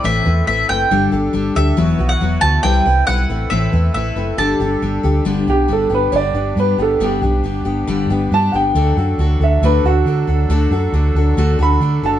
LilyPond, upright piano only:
\new Staff \with { instrumentName = "Upright piano" } { \time 4/4 \key g \major \tempo 4 = 137 r1 | r1 | r1 | r8 g'8 a'8 b'8 <cis'' d''>4 b'8 a'8 |
g'2 r4 a''8 <fis'' g''>8~ | <fis'' g''>4. e''8 b'8 fis'4.~ | fis'8 r2 b''4 a''8 | }